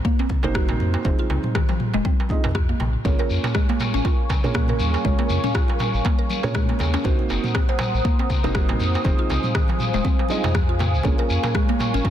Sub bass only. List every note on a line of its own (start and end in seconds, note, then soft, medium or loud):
0.44 0.73 F#1 medium
0.79 0.96 F2 medium
1.05 1.14 F1 medium
1.30 1.38 C2 loud
1.94 2.01 D#1 medium
2.44 2.73 F2 medium
2.80 2.97 A#1 loud
3.05 3.14 A#1 medium
3.30 3.39 F2 loud
3.94 4.01 G#1 medium
4.44 4.73 A#2 medium
4.80 4.96 D#2 medium
5.05 5.14 A#1 medium
5.30 5.38 F2 loud
5.94 6.01 G#1 medium
6.43 6.73 A#2 medium
6.80 6.97 D#2 loud
7.05 7.14 C2 loud
7.30 7.39 F#1 loud
7.94 8.01 A#1 medium
8.44 8.73 F#1 medium
8.80 8.97 F2 medium
9.05 9.14 F1 loud
9.30 9.39 C2 loud
9.94 10.01 D#1 medium
10.44 10.95 F2 medium
10.94 11.01 C2 loud
11.05 11.13 A#1 medium
11.30 11.38 F2 loud
11.94 12.01 G#1 medium